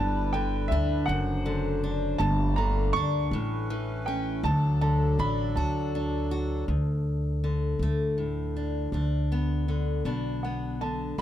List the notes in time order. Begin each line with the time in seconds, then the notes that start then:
Already playing: G1 G2 D3 G3 D4 E4 B4 A5
0.33 D3 G5
0.68 D2 E5
0.72 D4
1.06 F#1 F#2 F#3 D4 C5 F#5
1.46 D3
1.84 D4
2.18 G1 G2 G3 A3 A#3 A5
2.56 D3 A#5
2.93 D2 D4 C#6
3.31 A1 A2 A3 C#4 B4
3.70 E3
4.06 C#4 G5
4.43 D2 F#3 D4 A4 A5
4.81 D3 A5
5.19 A1 D4 B5
5.56 D2 F#4 A5
5.95 D4
6.31 F#4
6.68 D2
7.44 D3
7.79 D2 A3
8.18 A2
8.56 D4
8.92 D2 D4
9.32 B3
9.68 D3
10.05 B1 B2 D4
10.43 B3 F#5
10.81 D3 A5
11.18 A1 A2